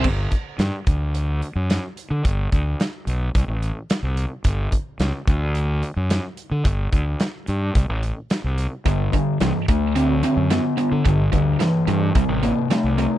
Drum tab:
CC |x-------|--------|--------|--------|
HH |-xxxxxxx|xxxxxxxx|xxxxxxxx|xxxxxxxx|
SD |--o---o-|--o---o-|--o---o-|--o---o-|
BD |oo-o----|oo--o---|oo-o----|oo--o---|

CC |--------|--------|
HH |xxxxxxxx|xxxxxxxx|
SD |--o---o-|--o---o-|
BD |oo-o----|oo--o---|